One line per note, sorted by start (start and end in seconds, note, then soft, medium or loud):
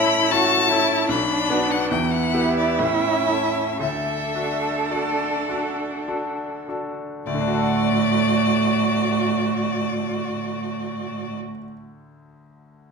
0.00 1.12 A2 medium
0.00 0.31 C#4 medium
0.00 0.31 E4 loud
0.00 0.32 E4 medium
0.00 0.33 E4 medium
0.00 0.32 A4 medium
0.00 0.33 B5 loud
0.31 0.66 C#4 medium
0.31 0.66 E4 medium
0.31 0.69 F#4 medium
0.31 0.71 F#4 medium
0.31 0.66 A4 medium
0.31 1.08 A5 loud
0.69 1.05 C#4 medium
0.69 1.08 E4 medium
0.69 1.10 E4 loud
0.69 1.06 E4 medium
0.69 1.06 A4 medium
1.09 1.49 B1 medium
1.09 1.93 D4 medium
1.09 1.92 D4 medium
1.09 1.73 B5 loud
1.50 1.87 B3 medium
1.50 1.87 D4 medium
1.50 1.88 F#4 medium
1.71 1.90 F#5 loud
1.90 2.32 E2 medium
1.90 2.81 B3 medium
1.90 3.81 E4 loud
1.90 2.13 G5 medium
2.11 2.56 F#5 loud
2.34 2.75 B3 medium
2.34 2.76 E4 medium
2.34 2.76 G4 medium
2.57 2.81 D5 medium
2.79 3.27 A2 medium
2.79 3.82 C#4 medium
2.79 3.80 E5 loud
3.28 3.77 C#4 soft
3.28 3.77 E4 medium
3.28 3.77 A4 medium
3.80 4.33 D2 medium
3.80 6.98 D4 medium
3.80 6.69 A4 medium
3.80 4.93 E5 medium
4.35 4.88 D4 soft
4.35 4.88 F#4 medium
4.35 4.88 A4 medium
4.91 5.45 D4 soft
4.91 5.45 F#4 medium
4.91 5.46 A4 medium
4.91 6.08 D5 medium
5.49 6.04 D4 medium
5.49 6.05 F#4 medium
5.49 6.05 A4 medium
6.08 6.65 D4 soft
6.08 6.65 F#4 soft
6.08 6.65 A4 medium
6.69 7.24 D4 soft
6.69 7.24 F#4 soft
6.69 7.24 A4 medium
7.26 11.36 D2 medium
7.26 11.37 A2 medium
7.26 11.37 F#4 loud
7.26 11.36 D5 loud
7.34 11.43 D3 medium
7.41 11.50 D4 medium
7.48 11.57 F#4 medium
7.55 11.64 A4 medium
7.62 11.71 F#5 medium